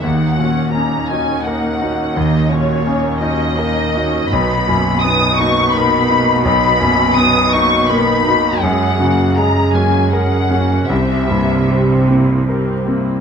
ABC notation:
X:1
M:6/8
L:1/8
Q:3/8=55
K:B
V:1 name="Violin section"
f2 a g f2 | d c2 d3 | b2 d' c' b2 | b2 d' c' b2 |
f2 a g f2 | e3 z3 |]
V:2 name="Viola section"
[A,D] [CF] [A,D] [CF] [A,D] [CF] | [A,D] [CF] [A,D] [CF] [A,D] [CF] | [B,D] [A,F] [B,D] [A,F] [B,D] [A,F] | [B,D] [A,F] [B,D] [A,F] [B,D] [A,F] |
[G,G] [A,F] [G,G] [A,F] [G,G] [A,F] | [=C=G] [_B,E] [CG] [B,E] [CG] [B,E] |]
V:3 name="Grand piano"
D,, A,, C D A D | D,, A,, C D A D | B,,, F,, B, D A, D | B,,, F,, B, D A, D |
F,, C, G, C A C | =C,, =G,, =G, =C _B C |]
V:4 name="Cello section" clef=bass
D,,6- | D,,6 | B,,6- | B,,6 |
F,,6 | =C,4- C, z |]